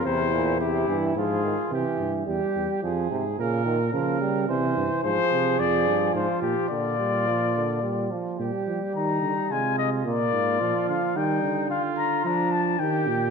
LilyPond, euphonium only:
\new Staff \with { instrumentName = "Euphonium" } { \clef bass \time 3/4 \key c \phrygian \tempo 4 = 108 c8 bes,8 c8 e8 f8 ees8 | e4 g4 f8 c8 | des8 ees8 f8 g8 e4 | \key ees \major f4 f2 |
d8 g8 f8 d8 g8 f8 | g2 aes4 | bes4 f4 g4 | r2. | }